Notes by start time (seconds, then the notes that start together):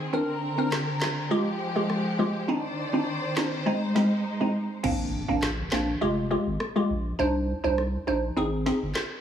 Already playing: D#3 C4 G#4
0.13 D3 C4 D4 A#4
0.58 C4 D4 A#4
0.72 cross-stick, snare, clap
1.02 snare, clap
1.31 F3 G#3 F4 G4
1.76 G#3 F4 G4
1.90 cross-stick
2.19 G#3 F4 G4
2.48 D#3 C4 D4 D#4 C5 D5
2.93 C4 D4 D#4
3.36 C4 D4 D#4, snare, clap
3.66 G#3 C4 D#4
3.95 G#3 C4 D#4, snare
4.40 G#3 C4 D#4
4.83 A#1 A#3 C4 D4, crash, impact
5.28 A#1 A#3 C4 D4
5.43 cross-stick, snare, clap
5.72 A#1 A#3 C4 D4, snare, clap
6.01 F1 G#3 F4 G4
6.31 G#3 F4 G4
6.46 G#1
6.60 cross-stick
6.76 G#3 F4 G4
6.90 A#1
7.19 C2 D4 D#4 C5
7.64 C2 D4 D#4 C5
7.78 cross-stick
8.07 A#1 D4 D#4 C5
8.37 G#1 C4 D#4 G#4
8.66 C4 D#4 G#4, snare
8.82 G1
8.95 cross-stick, snare, clap